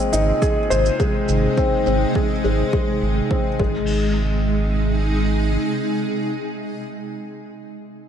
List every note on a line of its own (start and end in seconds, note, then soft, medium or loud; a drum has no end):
0.00 3.58 C3 medium
0.00 1.00 G#3 medium
0.00 3.59 G#3 medium
0.00 0.97 A#3 medium
0.00 1.57 C4 medium
0.00 0.85 F4 medium
0.00 3.59 G#4 medium
0.13 0.32 G#1 loud
0.13 0.40 D#4 medium
0.13 shaker medium
0.27 3.59 D#4 medium
0.42 0.58 G#4 medium
0.42 kick loud
0.42 shaker soft
0.70 0.90 G#1 loud
0.70 0.87 C5 medium
0.70 shaker medium
0.86 shaker soft
1.00 1.27 G#3 medium
1.00 kick medium
1.00 shaker soft
1.29 1.48 G#1 medium
1.29 shaker medium
1.57 1.85 C4 medium
1.57 kick medium
1.57 shaker soft
1.86 2.06 G#1 medium
1.86 2.14 C4 medium
1.86 shaker soft
2.15 2.32 G#4 medium
2.15 kick medium
2.30 shaker soft
2.44 2.63 G#1 medium
2.44 2.71 G#3 medium
2.44 shaker medium
2.73 3.00 G#3 medium
2.73 kick loud
2.73 shaker soft
3.02 3.21 G#1 loud
3.02 shaker medium
3.16 shaker soft
3.31 3.47 C4 medium
3.31 kick medium
3.59 5.57 G#1 medium
3.59 6.95 C3 medium
3.59 4.13 G#3 medium
3.59 kick medium
3.59 crash medium
3.68 6.95 G#3 medium
4.05 6.95 D#4 medium
4.14 6.95 G#4 medium